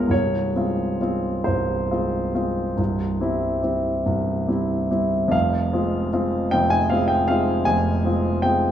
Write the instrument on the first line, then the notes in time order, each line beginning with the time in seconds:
grand piano
Already playing: C#1 C#2 G#3 B3 F4 A#4 C#5 D#5 F5 G5
0.07 C1 C2 C#5
0.56 G#3 C4 F4
1.01 G#3 C4 F4
1.44 C1 C2 C5
1.91 G#3 C4 F4
2.35 G#3 C4 F4
2.77 C1 C2
3.21 G3 C4 E4
3.62 G3 C4 E4
4.06 C1 C2
4.48 G3 C4 E4
4.91 G3 C4 E4
5.28 F1 F2 F5
5.73 G#3 C4 F4
6.13 G#3 C4 F4
6.51 F1 F2 G5
6.70 G#5
6.90 G#3 C4 F4 F5
7.08 G5
7.28 G#3 C4 F4 F5
7.65 F1 F2 G#5
8.05 G#3 C4 F4
8.42 G#3 C4 F4 G5